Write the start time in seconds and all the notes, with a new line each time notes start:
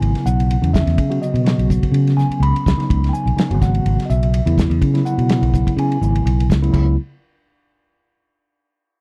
Already playing: C#3 F#3 B3 E4 G#5
0.02 G#1, ride
0.15 muted fingered electric bass stroke, snare, ride
0.26 B1 F#5, hi-hat pedal
0.40 ride
0.51 ride
0.62 E2 C#3 F#3 B3 C#4, ride
0.74 E5, kick, snare, hi-hat pedal
0.87 E2, snare, ride
0.98 C#3, kick, ride
1.10 C#3 F#3 B3 F#4, ride
1.22 D#5, hi-hat pedal
1.34 B2, ride
1.44 C#3 F#3 B3 F#4, snare, ride
1.58 B1, ride
1.70 kick, hi-hat pedal
1.83 muted fingered electric bass stroke, kick, ride
1.92 C#3, ride
2.07 snare, ride
2.17 C#3 F#3 B3 C#4 G#5, snare, hi-hat pedal
2.29 muted fingered electric bass stroke, ride
2.40 C#2 B5, ride
2.56 ride
2.66 C#2, kick, snare, hi-hat pedal
2.77 C#3 F#3 B3 D#4, snare, ride
2.90 C#2, kick, ride
3.04 snare, ride
3.09 G5
3.13 G#5, hi-hat pedal
3.26 B1, ride
3.36 C#3 F#3 B3 D#4, muted fingered electric bass stroke, snare, ride
3.50 G#1 C#3 F#3 B3 F#4, ride
3.61 F#5, kick, snare, hi-hat pedal
3.74 ride
3.86 G#1, ride
3.99 muted fingered electric bass stroke, snare, ride
4.06 D#5
4.10 B1 E5, hi-hat pedal
4.23 ride
4.34 ride
4.46 E2 C#3 F#3 B3 E4, ride
4.58 kick, snare, hi-hat pedal
4.70 E2, ride
4.81 C#3, kick, ride
4.94 C#3 F#3 B3 E4, snare, ride
5.05 F#5, hi-hat pedal
5.18 B2, ride
5.28 C#3 F#3 B3 E4, snare, ride
5.42 B1, ride
5.54 kick, hi-hat pedal
5.67 muted fingered electric bass stroke, kick, ride
5.77 C#3 G#5, ride
5.92 ride
6.01 G#1 C#3 F#3 B3 E4, hi-hat pedal
6.16 ride
6.25 B1, ride
6.40 ride
6.50 C#2, kick, snare, hi-hat pedal
6.62 C#3 F#3 B3 E4, ride
6.72 C#2 C#3 F#3 B3 E4, kick, crash